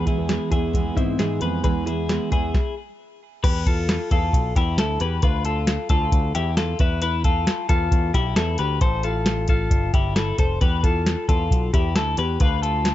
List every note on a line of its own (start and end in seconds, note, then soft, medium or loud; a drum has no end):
0.06 0.27 G#3 soft
0.06 0.28 B3 soft
0.06 0.29 E4 soft
0.06 0.49 E4 soft
0.06 0.49 G#4 medium
0.06 kick medium
0.06 closed hi-hat soft
0.18 0.37 E2 medium
0.28 0.51 E3 medium
0.28 0.51 G#3 medium
0.28 0.50 B3 medium
0.28 0.49 E4 medium
0.28 snare loud
0.28 closed hi-hat medium
0.50 0.90 E2 medium
0.50 0.72 G#3 soft
0.50 0.73 B3 soft
0.50 0.73 E4 soft
0.50 0.94 E4 medium
0.50 0.94 G#4 medium
0.50 kick medium
0.50 closed hi-hat medium
0.73 0.96 E3 medium
0.73 0.96 G#3 medium
0.73 0.95 B3 medium
0.73 0.94 E4 medium
0.73 kick medium
0.73 closed hi-hat medium
0.95 1.16 G#2 medium
0.95 1.18 G#3 soft
0.95 1.19 B3 soft
0.95 1.20 C4 medium
0.95 1.18 E4 soft
0.95 1.19 E4 medium
0.95 kick medium
0.95 closed hi-hat medium
1.18 1.39 G#2 medium
1.18 1.41 E3 medium
1.18 1.41 G#3 medium
1.18 1.40 B3 medium
1.18 1.41 E4 medium
1.18 1.39 E4 medium
1.18 1.41 G#4 medium
1.18 snare medium
1.18 closed hi-hat medium
1.40 1.61 F2 medium
1.40 1.62 G#3 soft
1.40 1.63 B3 medium
1.40 1.63 E4 medium
1.40 1.63 G#4 medium
1.40 1.63 B4 medium
1.40 closed hi-hat medium
1.63 2.17 E2 loud
1.63 1.86 E3 medium
1.63 1.86 G#3 medium
1.63 1.86 B3 medium
1.63 1.84 E4 medium
1.63 1.85 G#4 medium
1.63 1.86 B4 medium
1.63 kick medium
1.63 closed hi-hat medium
1.85 2.08 G#3 soft
1.85 2.08 B3 soft
1.85 2.08 E4 medium
1.85 2.29 E4 medium
1.85 2.29 G#4 medium
1.85 closed hi-hat medium
2.08 2.31 E3 medium
2.08 2.31 G#3 medium
2.08 2.30 B3 medium
2.08 2.29 E4 medium
2.08 snare medium
2.08 closed hi-hat medium
2.30 2.51 E2 medium
2.30 2.55 G#3 soft
2.30 2.54 B3 soft
2.30 2.53 E4 medium
2.30 2.74 E4 medium
2.30 2.74 G#4 medium
2.30 kick medium
2.30 closed hi-hat medium
2.54 kick loud
2.54 snare medium
3.44 3.97 E2 loud
3.44 3.66 G4 medium
3.44 3.66 B4 loud
3.44 kick loud
3.44 closed hi-hat medium
3.44 crash medium
3.66 4.09 F4 medium
3.66 4.09 A4 medium
3.66 kick medium
3.66 closed hi-hat medium
3.89 snare loud
3.89 closed hi-hat medium
4.11 4.30 E2 loud
4.11 4.54 F4 medium
4.11 4.53 A4 medium
4.11 kick medium
4.11 closed hi-hat medium
4.33 4.52 B1 loud
4.33 kick medium
4.33 closed hi-hat medium
4.56 4.78 E2 loud
4.56 4.79 E4 medium
4.56 4.79 G4 medium
4.56 kick medium
4.56 closed hi-hat medium
4.78 4.97 D2 medium
4.78 5.02 E4 medium
4.78 5.01 A4 medium
4.78 snare loud
4.78 closed hi-hat loud
5.00 5.20 E2 medium
5.00 5.24 G4 medium
5.00 5.22 B4 medium
5.00 closed hi-hat medium
5.22 5.76 D2 loud
5.22 5.45 F4 medium
5.22 5.45 B4 loud
5.22 kick loud
5.22 closed hi-hat medium
5.45 5.88 F4 medium
5.45 5.88 A4 medium
5.45 closed hi-hat medium
5.67 snare loud
5.67 closed hi-hat medium
5.89 6.09 D2 loud
5.89 6.33 F4 medium
5.89 6.32 A4 medium
5.89 kick medium
5.89 closed hi-hat medium
6.12 6.31 D2 medium
6.12 kick medium
6.12 closed hi-hat medium
6.35 6.73 E2 medium
6.35 6.57 E4 medium
6.35 6.58 G4 medium
6.35 closed hi-hat medium
6.57 6.80 F4 medium
6.57 6.80 A4 medium
6.57 snare loud
6.57 closed hi-hat medium
6.79 7.46 E2 medium
6.79 7.02 E4 medium
6.79 7.01 B4 medium
6.79 kick loud
6.79 closed hi-hat medium
7.02 7.25 E4 medium
7.02 7.24 B4 loud
7.02 closed hi-hat medium
7.24 7.67 F4 medium
7.24 7.67 A4 medium
7.24 kick medium
7.24 closed hi-hat medium
7.47 snare loud
7.47 closed hi-hat medium
7.69 7.89 E2 loud
7.69 8.12 F4 medium
7.69 8.11 A4 medium
7.69 kick medium
7.69 closed hi-hat medium
7.91 8.11 E2 medium
7.91 kick loud
7.91 closed hi-hat medium
8.14 8.33 B1 loud
8.14 8.36 E4 medium
8.14 8.36 G4 medium
8.14 kick medium
8.14 closed hi-hat medium
8.36 8.56 E2 medium
8.36 8.58 E4 medium
8.36 8.59 A4 medium
8.36 snare loud
8.36 closed hi-hat medium
8.58 8.78 D2 medium
8.58 8.82 G4 medium
8.58 8.81 B4 medium
8.58 closed hi-hat medium
8.81 9.67 A1 loud
8.81 9.03 A4 medium
8.81 9.04 C5 medium
8.81 kick loud
8.81 closed hi-hat medium
9.03 9.46 F4 medium
9.03 9.46 A4 medium
9.03 closed hi-hat medium
9.26 snare loud
9.26 closed hi-hat medium
9.48 9.91 F4 medium
9.48 9.91 A4 medium
9.48 kick medium
9.48 closed hi-hat medium
9.71 9.90 G1 medium
9.71 kick medium
9.71 closed hi-hat medium
9.93 10.32 G1 medium
9.93 10.15 E4 medium
9.93 10.15 G4 medium
9.93 kick medium
9.93 closed hi-hat medium
10.16 10.38 E4 medium
10.16 10.38 A4 medium
10.16 snare medium
10.16 closed hi-hat medium
10.38 10.58 F1 medium
10.38 10.61 A4 medium
10.38 10.61 C5 medium
10.38 kick medium
10.38 closed hi-hat medium
10.61 11.14 E2 loud
10.61 10.83 G4 medium
10.61 10.84 B4 loud
10.61 kick loud
10.61 closed hi-hat medium
10.84 11.26 F4 medium
10.84 11.26 A4 medium
10.84 kick medium
10.84 closed hi-hat medium
11.06 snare loud
11.06 closed hi-hat medium
11.29 11.48 E2 loud
11.29 11.71 F4 medium
11.29 11.71 A4 medium
11.29 kick medium
11.29 closed hi-hat medium
11.51 11.70 B1 medium
11.51 kick medium
11.51 closed hi-hat medium
11.73 11.96 E2 medium
11.73 11.96 E4 medium
11.73 11.96 G4 medium
11.73 kick medium
11.73 closed hi-hat medium
11.96 12.15 D2 medium
11.96 12.19 E4 medium
11.96 12.18 A4 medium
11.96 snare loud
11.96 closed hi-hat medium
12.17 12.37 E2 medium
12.17 12.41 G4 medium
12.17 12.40 B4 medium
12.17 closed hi-hat medium
12.40 12.94 D2 loud
12.40 12.62 F4 medium
12.40 12.62 B4 loud
12.40 kick loud
12.40 closed hi-hat medium
12.62 12.95 F4 medium
12.62 12.95 A4 medium
12.62 closed hi-hat medium
12.85 snare loud
12.85 closed hi-hat medium